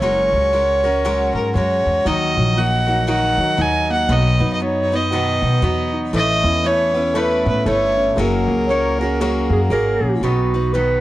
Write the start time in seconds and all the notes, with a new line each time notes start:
0.02 F#1 F#3 G#3 C#4 F#4 A#4 C#5
0.33 C#2
0.53 G#3 C#4 F#4 A#4
0.84 C#4 F#4 A#4
1.05 F#3 G#3 C#4 F#4 A#4
1.34 G#2 A#4
1.55 F#2 G#3 C#4 F#4 A#4 C#5
1.86 E2
2.05 D#2 D#3 F#3 D#4 F#4 A#4 D#5
2.36 A#1 F#3
2.56 F#3 A#3 D#4 F#4 A#4 F#5
2.87 F#3 D#4 F#4 A#4
3.07 D#3 F#3 D#4 F#4 A#4 F#5
3.38 D#3 F#3
3.57 D#2 F#3 D#4 F#4 A#4
3.62 G#5
3.90 A#3 F#5
4.09 B1 B2 D#3 F#3 B3 D#4 F#4 B4 D#5
4.39 F#2 F#3 B3 D#4 B4
4.53 D#5
4.60 F#3 B3 D#4 B4 C#5
4.91 F#3 B3 D#4 B4
4.95 D#5
5.10 B2 D#3 F#3 B3 D#4 F#4 B4
5.42 B2 B3
5.62 E2 F#3 B3 D#4 F#4 B4
5.92 D#4
6.13 A1 E3 A3 C#4 E4 A4 B4 D#5
6.43 E2 B3 C#4 E4 B4
6.63 A3 C#4 E4 B4 C#5
6.93 B3 C#4 E4 B4
7.14 A3 C#4 E4 A4 B4
7.45 A2 B3 B4
7.65 G1 A3 C#4 E4 A4 B4 C#5
7.96 C#4
8.16 F#1 F#3 A#3 C#4 F#4 G#4
8.20 A#4
8.47 C#2 A#3
8.67 A#3 C#4 F#4 C#5
8.71 G#4
8.98 A#3 G#4 A#4
9.02 C#4 F#4
9.19 F#3 A#3 C#4 F#4 G#4
9.50 F#2 A#3 G#4
9.70 G#1 A#3 C#4 F#4 G#4 A#4
10.01 A#1 C#4
10.21 B1 B2 D#3 F#3 B3 D#4 F#4 B4
10.54 F#3 B3 D#4 B4
10.73 B2 D#3 F#3 B3 D#4 B4